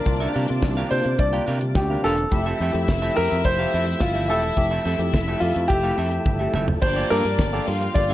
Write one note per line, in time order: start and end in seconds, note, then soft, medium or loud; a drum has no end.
0.00 2.28 D3 medium
0.00 2.28 A#3 medium
0.00 2.28 C4 medium
0.00 2.01 D4 medium
0.00 2.28 F4 medium
0.00 0.60 A#4 medium
0.00 2.01 D5 loud
0.06 0.26 C2 loud
0.06 0.20 A#3 medium
0.06 0.20 D4 medium
0.06 0.20 F4 medium
0.06 muted clean electric guitar stroke soft
0.06 kick medium
0.06 closed hi-hat medium
0.20 0.32 D4 medium
0.20 0.33 G4 medium
0.20 0.34 A#4 medium
0.20 0.34 F5 medium
0.34 0.48 C3 medium
0.34 0.45 C3 loud
0.34 0.48 G3 medium
0.34 0.49 D4 medium
0.34 0.49 G4 medium
0.34 0.48 A#4 medium
0.34 0.48 F5 medium
0.34 open hi-hat medium
0.48 0.64 C3 medium
0.48 0.62 A#3 medium
0.48 0.62 D4 medium
0.48 0.63 F4 medium
0.48 muted clean electric guitar stroke medium
0.48 closed hi-hat soft
0.62 0.83 C2 loud
0.62 0.76 C3 medium
0.62 0.76 G3 medium
0.62 muted clean electric guitar stroke soft
0.62 kick loud
0.62 snare loud
0.62 closed hi-hat medium
0.77 0.90 D4 medium
0.77 0.90 G4 medium
0.77 0.91 A#4 medium
0.77 0.91 F5 medium
0.90 1.01 C3 medium
0.90 1.05 A#3 medium
0.90 1.05 D4 medium
0.90 1.05 F4 medium
0.90 1.20 C5 loud
0.90 muted clean electric guitar stroke soft
0.90 open hi-hat medium
1.05 1.15 C3 medium
1.05 1.12 D4 soft
1.05 1.12 F4 soft
1.05 muted clean electric guitar stroke soft
1.05 closed hi-hat soft
1.18 1.39 C2 medium
1.18 1.78 D5 medium
1.18 muted clean electric guitar stroke soft
1.18 kick loud
1.18 closed hi-hat medium
1.33 1.47 A#3 medium
1.33 1.47 D4 medium
1.33 1.45 D4 medium
1.33 1.47 F4 medium
1.33 1.46 G4 medium
1.33 1.47 A#4 medium
1.33 1.48 G5 medium
1.46 1.77 C3 medium
1.46 1.62 D4 medium
1.46 1.61 G4 medium
1.46 1.60 A#4 medium
1.46 1.60 F5 medium
1.46 open hi-hat medium
1.61 1.75 C3 medium
1.61 1.75 G3 medium
1.61 muted clean electric guitar stroke medium
1.61 closed hi-hat medium
1.75 1.95 D2 medium
1.75 2.05 G4 medium
1.75 muted clean electric guitar stroke soft
1.75 kick loud
1.75 snare loud
1.75 closed hi-hat medium
1.89 2.03 C3 medium
1.89 2.03 G3 medium
1.89 2.03 D4 medium
1.89 2.03 G4 medium
1.89 2.04 A#4 medium
1.89 2.05 F5 medium
2.03 2.24 E1 medium
2.03 2.17 A#3 medium
2.03 2.17 D4 medium
2.03 2.23 D4 medium
2.03 2.17 F4 medium
2.03 2.18 G4 medium
2.03 2.85 A4 loud
2.03 2.17 A#4 medium
2.03 2.17 F5 medium
2.03 open hi-hat medium
2.17 muted clean electric guitar stroke soft
2.17 closed hi-hat soft
2.31 2.52 F1 loud
2.31 6.79 F3 medium
2.31 2.45 A3 medium
2.31 6.79 A3 medium
2.31 6.79 E4 medium
2.31 2.45 E4 medium
2.31 6.51 E4 medium
2.31 4.55 G4 medium
2.31 2.45 G4 medium
2.31 6.51 E5 loud
2.31 muted clean electric guitar stroke soft
2.31 kick medium
2.31 closed hi-hat medium
2.46 2.60 C4 medium
2.46 2.61 G4 medium
2.46 2.61 A4 medium
2.46 2.61 E5 medium
2.60 2.70 F2 medium
2.60 2.73 F3 medium
2.60 2.76 C4 medium
2.60 2.75 G4 medium
2.60 2.74 A4 medium
2.60 2.74 E5 medium
2.60 open hi-hat soft
2.72 2.84 F2 medium
2.72 2.87 A3 medium
2.72 2.87 E4 medium
2.72 2.87 G4 medium
2.72 muted clean electric guitar stroke soft
2.72 closed hi-hat soft
2.87 3.08 F1 medium
2.87 3.01 F3 medium
2.87 muted clean electric guitar stroke soft
2.87 kick loud
2.87 snare loud
2.87 closed hi-hat medium
3.02 3.16 C4 medium
3.02 3.16 G4 medium
3.02 3.17 A4 medium
3.02 3.17 E5 medium
3.15 3.27 F2 medium
3.15 3.29 A3 medium
3.15 3.29 E4 medium
3.15 3.29 G4 medium
3.15 3.46 A#4 loud
3.15 open hi-hat medium
3.30 3.42 F2 medium
3.30 3.36 E4 soft
3.30 3.36 G4 soft
3.30 muted clean electric guitar stroke medium
3.30 closed hi-hat soft
3.44 3.65 F1 loud
3.44 3.98 C5 loud
3.44 muted clean electric guitar stroke soft
3.44 kick loud
3.44 closed hi-hat medium
3.59 3.72 A3 medium
3.59 3.72 C4 medium
3.59 3.72 E4 medium
3.59 3.72 G4 medium
3.59 3.73 G4 medium
3.59 3.73 A4 medium
3.59 3.75 F5 medium
3.73 3.93 F2 medium
3.73 3.88 C4 medium
3.73 3.87 G4 medium
3.73 3.87 A4 medium
3.73 3.86 E5 medium
3.73 open hi-hat medium
3.86 4.01 F3 medium
3.86 muted clean electric guitar stroke soft
3.86 closed hi-hat medium
4.00 4.30 G1 medium
4.00 4.07 E4 soft
4.00 4.28 F4 medium
4.00 4.07 G4 soft
4.00 muted clean electric guitar stroke soft
4.00 kick loud
4.00 snare loud
4.00 closed hi-hat medium
4.15 4.29 F3 medium
4.15 4.28 C4 soft
4.15 4.29 G4 soft
4.15 4.30 A4 medium
4.15 4.30 E5 medium
4.28 4.49 E1 loud
4.28 4.42 A3 medium
4.28 4.49 C4 medium
4.28 4.42 E4 medium
4.28 4.42 G4 medium
4.28 4.44 G4 medium
4.28 5.10 A4 medium
4.28 4.44 A4 medium
4.28 4.43 E5 medium
4.28 open hi-hat medium
4.42 muted clean electric guitar stroke medium
4.42 closed hi-hat soft
4.56 4.77 F1 loud
4.56 4.70 A3 medium
4.56 4.71 E4 medium
4.56 4.71 G4 medium
4.56 6.81 A4 medium
4.56 muted clean electric guitar stroke soft
4.56 kick medium
4.56 closed hi-hat medium
4.71 4.84 C4 medium
4.71 4.85 G4 medium
4.71 4.86 A4 medium
4.71 4.86 E5 medium
4.84 4.96 F2 loud
4.84 4.98 F3 medium
4.84 5.01 C4 medium
4.84 5.01 G4 medium
4.84 5.00 A4 medium
4.84 5.00 E5 medium
4.84 open hi-hat medium
4.98 5.09 F2 medium
4.98 5.13 A3 medium
4.98 5.13 E4 medium
4.98 5.13 G4 medium
4.98 muted clean electric guitar stroke medium
4.98 closed hi-hat soft
5.13 5.34 F1 medium
5.13 5.27 F3 medium
5.13 muted clean electric guitar stroke soft
5.13 kick loud
5.13 snare loud
5.13 closed hi-hat medium
5.28 5.40 C4 medium
5.28 5.41 G4 medium
5.28 5.41 A4 medium
5.28 5.41 E5 medium
5.40 5.52 F2 medium
5.40 5.55 A3 medium
5.40 5.54 E4 medium
5.40 5.71 F4 medium
5.40 5.55 G4 medium
5.40 open hi-hat medium
5.55 5.66 F2 loud
5.55 5.62 E4 soft
5.55 5.62 G4 soft
5.55 muted clean electric guitar stroke soft
5.55 closed hi-hat soft
5.68 5.90 F1 loud
5.68 6.50 G4 loud
5.68 muted clean electric guitar stroke soft
5.68 kick loud
5.68 closed hi-hat medium
5.83 5.97 A3 medium
5.83 5.95 C4 medium
5.83 5.97 E4 medium
5.83 5.98 G4 medium
5.83 5.97 G4 medium
5.83 5.97 A4 medium
5.83 5.98 F5 loud
5.97 6.18 F2 medium
5.97 6.13 C4 medium
5.97 6.12 G4 medium
5.97 6.11 A4 medium
5.97 6.11 E5 medium
5.97 open hi-hat medium
6.11 6.26 F3 medium
6.11 muted clean electric guitar stroke soft
6.11 closed hi-hat medium
6.26 6.46 G1 loud
6.26 muted clean electric guitar stroke soft
6.26 kick loud
6.26 high tom medium
6.39 6.54 A3 medium
6.39 6.53 C4 soft
6.39 6.54 E4 medium
6.39 6.54 G4 medium
6.39 6.53 G4 medium
6.39 6.54 A4 medium
6.39 6.54 E5 medium
6.54 6.75 F#1 loud
6.54 6.73 C4 medium
6.54 6.68 G4 medium
6.54 6.68 A4 medium
6.54 6.67 E5 medium
6.54 mid tom medium
6.68 6.82 F3 medium
6.68 muted clean electric guitar stroke soft
6.68 floor tom medium
6.82 7.02 G1 loud
6.82 6.96 G2 medium
6.82 6.96 D3 medium
6.82 8.14 F3 medium
6.82 8.14 A#3 medium
6.82 8.14 D4 medium
6.82 7.65 D4 medium
6.82 8.14 G4 medium
6.82 7.12 C5 loud
6.82 7.65 D5 medium
6.82 muted clean electric guitar stroke soft
6.82 kick loud
6.82 crash loud
6.96 7.09 A#3 medium
6.96 7.03 F4 soft
6.96 7.10 F4 medium
6.96 7.10 G4 medium
6.96 7.02 A4 soft
6.96 7.11 D5 medium
7.10 7.21 G2 loud
7.10 7.24 A#3 medium
7.10 7.26 A#3 medium
7.10 7.24 F4 medium
7.10 7.25 F4 medium
7.10 7.25 G4 medium
7.10 7.24 A4 loud
7.10 7.91 A#4 loud
7.10 7.24 D5 medium
7.10 open hi-hat medium
7.25 7.35 G2 loud
7.25 muted clean electric guitar stroke medium
7.25 closed hi-hat soft
7.38 7.59 G1 loud
7.38 7.52 G2 medium
7.38 7.52 D3 medium
7.38 muted clean electric guitar stroke medium
7.38 kick loud
7.38 snare loud
7.38 closed hi-hat medium
7.52 7.66 A#3 medium
7.52 7.67 A#3 medium
7.52 7.65 F4 medium
7.52 7.68 F4 medium
7.52 7.68 G4 medium
7.52 7.65 A4 medium
7.52 7.68 D5 medium
7.66 7.87 G2 loud
7.66 7.73 F4 soft
7.66 8.14 F4 medium
7.66 7.73 A4 soft
7.66 8.14 F5 loud
7.66 muted clean electric guitar stroke soft
7.66 open hi-hat medium
7.81 muted clean electric guitar stroke soft
7.81 closed hi-hat soft
7.94 8.14 G1 loud
7.94 8.01 F4 soft
7.94 8.01 A4 soft
7.94 8.14 D5 loud
7.94 muted clean electric guitar stroke soft
7.94 kick loud
7.94 closed hi-hat medium
8.09 8.14 G2 medium
8.09 8.14 D3 medium
8.09 8.14 G4 medium
8.09 8.14 E5 medium